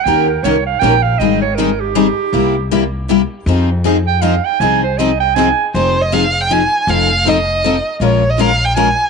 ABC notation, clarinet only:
X:1
M:3/4
L:1/16
Q:"Swing" 1/4=159
K:Fm
V:1 name="Clarinet"
g2 B2 d2 f2 g2 f2 | e2 d2 B2 G6- | G4 z8 | z6 g2 f2 g2 |
a2 c2 e2 g2 a3 z | z12 | z12 | z12 |]